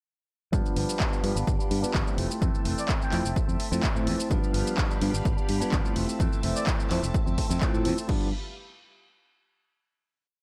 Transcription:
0.52 fingered electric bass G2, clean electric guitar F3 B3 D4, tine electric piano G3 B3 D4 F4 B4, string machine G4 F5 B5, kick, shaker
0.66 shaker
0.76 fingered electric bass G1, clean electric guitar F3 B3 D4, open hi-hat
0.89 shaker
1.00 clean electric guitar F3 B3 D4, kick, clap, shaker
1.13 shaker
1.23 fingered electric bass G2, clean electric guitar F3 B3 D4, tine electric piano G3 B3 D4 F4 B4, open hi-hat
1.35 fingered electric bass G1, clean electric guitar B3 D4, shaker
1.47 kick, shaker
1.59 clean electric guitar B3 D4, muted fingered electric bass stroke, shaker
1.71 fingered electric bass G2, open hi-hat
1.82 tine electric piano G3 B3 D4 F4 B4, clean electric guitar B3 D4, muted fingered electric bass stroke, shaker
1.94 fingered electric bass G1, clean electric guitar F3 B3 D4, kick, clap, shaker
2.06 tine electric piano A3 C4 E4 F4 C5, shaker
2.17 fingered electric bass F1, clean electric guitar E3 A3 C4, string machine E5 A5, open hi-hat
2.29 clean electric guitar A3 C4, shaker
2.41 fingered electric bass F2, clean electric guitar E3 A3 C4, tine electric piano A3 C4 E4 C5, kick, shaker
2.55 shaker
2.64 fingered electric bass F1, clean electric guitar E3 A3 C4, open hi-hat
2.78 trumpet section D5, shaker
2.88 clean electric guitar E3 A3 C4, kick, clap, shaker
3.01 trumpet section G5, shaker
3.12 fingered electric bass F2, clean electric guitar E3 A3 C4, tine electric piano A3 C4 E4 F4 C5, clap, open hi-hat
3.24 fingered electric bass F1, clean electric guitar A3 C4, shaker
3.36 kick, shaker
3.48 fingered electric bass F2, clean electric guitar A3 C4, shaker
3.60 open hi-hat
3.71 fingered electric bass F2, tine electric piano A3 C4 E4 F4 C5, clean electric guitar A3 C4, shaker
3.83 clean electric guitar E3 A3 C4, kick, clap, shaker
3.95 fingered electric bass A2, tine electric piano A3 C4 E4 C5, shaker
4.06 fingered electric bass F2, clean electric guitar E3 A3 C4, open hi-hat
4.18 clean electric guitar A3 C4, shaker
4.30 fingered electric bass G2, clean electric guitar F3 B3 D4, tine electric piano G3 B3 D4 F4 B4, string machine G4 F5 B5, kick, shaker
4.44 shaker
4.53 fingered electric bass G1, clean electric guitar F3 B3 D4, open hi-hat
4.67 shaker
4.77 clean electric guitar F3 B3 D4, kick, clap, shaker
4.91 shaker
5.00 fingered electric bass G2, clean electric guitar F3 B3 D4, tine electric piano G3 B3 D4 F4 B4, open hi-hat
5.13 fingered electric bass G1, clean electric guitar B3 D4, shaker
5.25 kick, shaker
5.37 clean electric guitar B3 D4, muted fingered electric bass stroke, shaker
5.49 fingered electric bass G2, open hi-hat
5.60 tine electric piano G3 B3 D4 F4 B4, clean electric guitar B3 D4, muted fingered electric bass stroke, shaker
5.72 fingered electric bass G1, clean electric guitar F3 B3 D4, kick, clap, shaker
5.84 tine electric piano A3 C4 E4 F4 C5, shaker
5.95 fingered electric bass F1, clean electric guitar E3 A3 C4, string machine E5 A5, open hi-hat
6.07 clean electric guitar A3 C4, shaker
6.19 fingered electric bass F2, clean electric guitar E3 A3 C4, tine electric piano A3 C4 E4 C5, kick, shaker
6.33 shaker
6.42 fingered electric bass F1, clean electric guitar E3 A3 C4, open hi-hat
6.56 trumpet section D5, shaker
6.67 clean electric guitar E3 A3 C4, kick, clap, shaker
6.80 shaker
6.90 fingered electric bass F2, clean electric guitar E3 A3 C4, tine electric piano A3 C4 E4 F4 C5, clap, open hi-hat
7.02 fingered electric bass F1, clean electric guitar A3 C4, shaker
7.14 kick, shaker
7.26 fingered electric bass F2, clean electric guitar A3 C4, shaker
7.38 kick, open hi-hat
7.49 fingered electric bass F2, clean electric guitar A3 C4, shaker
7.61 clean electric guitar E3 A3 C4, tine electric piano A3 C4 E4 F4 C5, kick, clap, shaker
7.73 fingered electric bass A2, tine electric piano A3 C4 E4 F4 C5, shaker
7.84 fingered electric bass F2, clean electric guitar E3 A3 C4, tine electric piano A3 C4 E4 F4 C5, open hi-hat
7.97 clean electric guitar A3 C4, shaker
8.08 fingered electric bass G2, clean electric guitar F3 B3 D4, tine electric piano G3 B3 D4 F4 B4, string machine G4 F5 B5, kick, crash

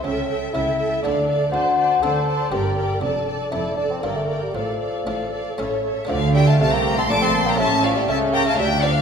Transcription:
0.04 double bass section C#2, harpsichord C#3, cello section C#3, bassoon C#4, viola section A4, violin section E5 G5
0.29 viola section A4, violin section E5 G5
0.53 double bass section C#2, cello section C#3, harpsichord C#3 A3 E4, bassoon E4, viola section A4, violin section E5 G5
0.79 viola section A4, violin section E5 G5
1.03 double bass section D2, cello section D3, harpsichord D3 A3 D4, bassoon D4, viola section A4, violin section D5 F5
1.28 viola section A4, violin section D5 F5
1.52 double bass section D2, harpsichord D3, cello section D3, bassoon F#4, viola section C5, violin section D5 A5
1.78 viola section C5, violin section D5 A5
2.02 double bass section D2, cello section D3, harpsichord D3 A3 C4 D4, bassoon A4, viola section C5, violin section D5 A5
2.28 viola section C5, violin section D5 A5
2.52 double bass section G1, harpsichord G2 A#3 D4, cello section G2, bassoon G4, viola section A#4, violin section D5 G5
2.78 viola section A#4, violin section D5 G5
3.01 double bass section F1, harpsichord F2, cello section F2, bassoon D4, viola section A4, violin section D5 A5
3.27 viola section A4, violin section D5 A5
3.51 double bass section F1, cello section F2, harpsichord F2 A3 D4, bassoon E4, viola section A4, violin section D5 A5
3.77 bassoon D4, viola section A4, violin section D5 A5
3.91 bassoon C4
4.02 double bass section G1, cello section G2, harpsichord G2 A#3 D4, bassoon A#3, viola section A#4, violin section D5 G5
4.16 bassoon A3
4.28 viola section A#4, violin section D5 G5
4.43 bassoon G3
4.54 double bass section A1, cello section A2, harpsichord A2, bassoon F3, viola section A4, violin section D5 F5
4.79 viola section A4, violin section D5 F5
5.06 double bass section A1, cello section A2, harpsichord A2 A3 D4, viola section A4, violin section D5 F5
5.31 viola section A4, violin section D5 F5
5.58 double bass section A1, cello section A2, harpsichord A2 A3 C#4 E4, viola section A4, violin section C#5 E5
5.84 viola section A4, violin section C#5 E5
6.05 harpsichord A3 D4 F4, viola section A3, violin section D5
6.09 double bass section D2, cello section D3, harpsichord D3, bassoon F3, violin section F5
6.34 bassoon G3, violin section E5 G5
6.46 bassoon A3, violin section F5 A5
6.59 double bass section C2, cello section C3, harpsichord C3, viola section A3, bassoon A3, violin section F5 A5
6.72 bassoon A#3, violin section G5 A#5
6.97 bassoon C4, violin section A5 C6
7.09 double bass section A#1, cello section A#2, harpsichord A#2, viola section A3, bassoon D4, violin section A5 D6
7.22 bassoon C4, violin section A5 C6
7.34 viola section A#3
7.46 bassoon A#3, violin section G5 A#5
7.54 harpsichord A3 C#4 G4
7.59 double bass section A1, cello section A2, harpsichord A2, bassoon A3, viola section C#4, violin section E5 A5
7.84 bassoon F3, violin section D5 F5
7.96 bassoon G3, violin section E5 G5
8.08 double bass section C#2, cello section C#3, harpsichord C#3, bassoon A3, viola section C#4, violin section E5 A5
8.33 bassoon A#3, violin section G5 A#5
8.46 bassoon A3, violin section F5 A5
8.54 cello section D2, harpsichord A3 D4 F4, violin section E5
8.58 double bass section D2, harpsichord D2, bassoon G3, viola section D4, violin section G5
8.82 bassoon F3, violin section D5 F5

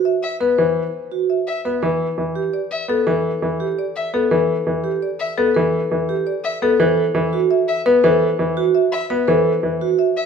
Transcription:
Already playing: vibraphone F#4
0.05 marimba E5
0.23 violin E5
0.40 grand piano B3, marimba B4
0.58 grand piano E3, marimba C5
1.11 vibraphone F#4
1.30 marimba E5
1.47 violin E5
1.65 grand piano B3, marimba B4
1.82 grand piano E3, marimba B4
2.18 grand piano E3
2.35 vibraphone G4
2.54 marimba D5
2.71 violin E5
2.88 grand piano B3, marimba A4
3.07 grand piano E3, marimba B4
3.42 grand piano E3
3.60 vibraphone G4
3.79 marimba D5
3.96 violin E5
4.14 grand piano B3, marimba A4
4.31 grand piano E3, marimba B4
4.67 grand piano E3
4.84 vibraphone G4
5.02 marimba D5
5.20 violin E5
5.38 grand piano B3, marimba A4
5.55 grand piano E3, marimba B4
5.91 grand piano E3
6.09 vibraphone G4
6.27 marimba D5
6.44 violin E5
6.62 grand piano B3, marimba A4
6.80 grand piano E3, vibraphone A4, marimba C5
7.15 grand piano E3
7.33 vibraphone F#4
7.51 marimba E5
7.68 violin E5
7.86 grand piano B3, marimba B4
8.04 grand piano E3, vibraphone A4, marimba C5
8.39 grand piano E3
8.57 vibraphone F#4
8.75 marimba E5
8.92 violin E5
9.10 grand piano B3, marimba B4
9.28 grand piano E3, vibraphone A4, marimba C5
9.63 grand piano E3
9.81 vibraphone F#4
9.99 marimba E5
10.17 violin E5

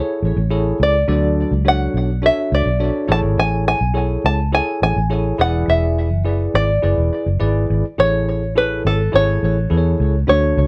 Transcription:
Already playing: tine electric piano E4 G#4 A4, five-string banjo C#5
0.00 tine electric piano C#5
0.22 fingered electric bass A1
0.37 fingered electric bass A1
0.50 tine electric piano E4 G#4 A4 C#5
0.80 fingered electric bass C#2, five-string banjo D5
1.08 fingered electric bass D2, tine electric piano F#3 D4 F#4 A4 D5
1.51 fingered electric bass C#2
1.65 tine electric piano D4 F#4 A4 C#5, five-string banjo F#5
1.94 fingered electric bass B1
2.22 tine electric piano D4 F#4 A4 C#5, five-string banjo E5
2.52 fingered electric bass C#2, five-string banjo D5
2.66 fingered electric bass B1
2.80 tine electric piano D4 F#4 A4 C#5
3.08 fingered electric bass A1, tine electric piano A2 E4 G#4 A4 C#5
3.12 five-string banjo A5
3.23 fingered electric bass G#1
3.38 fingered electric bass A1, five-string banjo G#5
3.68 five-string banjo G#5
3.81 fingered electric bass B1
3.94 tine electric piano E4 G#4 A4 C#5
4.24 fingered electric bass C#2, five-string banjo A5
4.52 tine electric piano E4 G#4 A4 C#5, five-string banjo G#5
4.82 fingered electric bass A1, five-string banjo G#5
4.96 fingered electric bass A1
5.10 tine electric piano E4 G#4 A4 C#5
5.38 fingered electric bass E1, tine electric piano E3 E4 G#4 B4 D5, five-string banjo F#5
5.68 fingered electric bass E1, five-string banjo E5
6.11 fingered electric bass F#1
6.25 tine electric piano E4 G#4 B4 D5
6.54 fingered electric bass G#1, five-string banjo D5
6.82 fingered electric bass F#1, tine electric piano E4 G#4 B4 D5
6.98 fingered electric bass E1
7.26 fingered electric bass F#1
7.40 fingered electric bass G#1, tine electric piano E4 G#4 B4 D5
7.70 fingered electric bass G#1
7.98 fingered electric bass A1, tine electric piano A2 E4 G#4 A4 C#5, five-string banjo C#5
8.55 tine electric piano E4 G#4 A4 C#5, five-string banjo B4
8.85 fingered electric bass G#1, five-string banjo A4
9.12 fingered electric bass G#1, tine electric piano E4 G#4 A4 C#5, five-string banjo C#5
9.43 fingered electric bass A1
9.70 fingered electric bass E2, tine electric piano E4 G#4 A4 B4
9.77 tine electric piano C#5
10.00 fingered electric bass C#2
10.27 fingered electric bass D2, tine electric piano D3 D4 F#4 A4 C#5, five-string banjo C#5
10.57 fingered electric bass C#2

